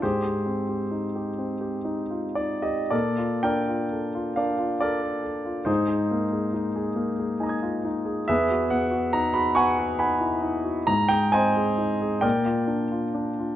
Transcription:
0.02 G#2 G4 G#4 C5
0.25 G4
0.46 C4
0.69 G4
0.91 D#4
1.16 G4
1.38 C4
1.61 G4
1.85 D#4
2.11 F4
2.35 D#4 D5
2.62 G4 D#5
2.91 A#2 A4 A#4 D5
3.18 F4
3.43 D4 A#4 D5 G5
3.68 F4
3.92 A4
4.15 F4
4.36 D4 A#4 D5 F5
4.59 F4
4.80 A4 A#4 D5
5.24 A4
5.45 F4
5.65 G#2 D#4 G#4 C5
5.88 G#4
6.11 A#3
6.33 G#4
6.54 D#4
6.76 G#4
6.96 A#3
7.19 G#4
7.40 D#4 G#5 A#5
7.46 D#6 G#6
7.63 F4
7.85 D#4
8.05 G#4
8.28 E2 G#4 B4 E5
8.50 F#4
8.70 B3 F#5
8.91 F#4
9.13 D#4 A#5
9.34 F#4 B5
9.55 B3 F#5 G#5 C#6
9.79 F#4
9.99 D#4 F#5 G#5 B5
10.20 E4
10.41 D#4
10.65 F#4
10.87 G#2 A#5
11.08 G#4 G5
11.32 C4 C5 D#5 G#5
11.57 G#4
11.78 D#4
12.01 G#4
12.21 A#2 A#4 D5 G5
12.46 F4
12.67 D4
12.92 F4
13.14 D4
13.39 F4

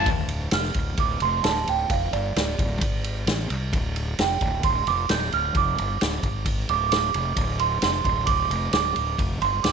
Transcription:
0.06 D1, kick, ride
0.29 ride
0.51 F1 F6, snare, ride
0.74 D1, kick, ride
0.97 D1 D6, kick, ride
1.20 F1 C6, ride
1.44 D1 A5, snare, ride
1.67 D1 G5, ride
1.90 F1 F5, kick, ride
2.13 G1 D5, ride
2.36 D1 D5, snare, ride
2.59 D1, kick, ride
2.81 G#1, kick, ride
3.04 ride
3.27 A1, snare, ride
3.50 C2, ride
3.73 D1, kick, ride
3.96 ride
4.19 F1 G5, snare, ride
4.41 D1, kick, ride
4.63 D1 C6, kick, ride
4.87 F1 D6, ride
5.09 D1 G6, snare, ride
5.32 D1 F6, ride
5.55 F1 D6, kick, ride
5.78 G1, ride
6.01 D1, snare, ride
6.23 G#1, kick, ride
6.46 kick, ride
6.69 D1 D6, ride
6.90 D6, snare, ride
7.14 F1, ride
7.36 D1, kick, ride
7.59 C6, ride
7.82 F1 C6, snare, ride
8.05 D1 C6, kick, ride
8.26 D1 D6, kick, ride
8.50 F1, ride
8.73 D1 D6, snare, ride
8.96 D1, ride
9.18 F1, kick, ride
9.41 G1 C6, ride
9.63 D1 D6, snare, ride

